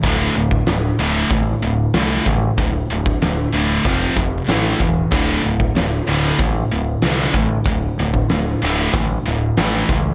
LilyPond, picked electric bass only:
\new Staff \with { instrumentName = "Picked electric bass" } { \clef bass \time 4/4 \key a \dorian \tempo 4 = 94 d,,8 d,,8 d,,8 d,,8 a,,8 d,,8 c,8 a,,8 | d,,8 d,,8 d,,8 d,,8 f,,8 f,,8 a,,8 e,,8 | d,,8 d,,8 d,,8 d,,8 a,,8 d,,8 c,8 a,,8 | d,,8 d,,8 d,,8 d,,8 a,,8 d,,8 a,,8 cis,8 | }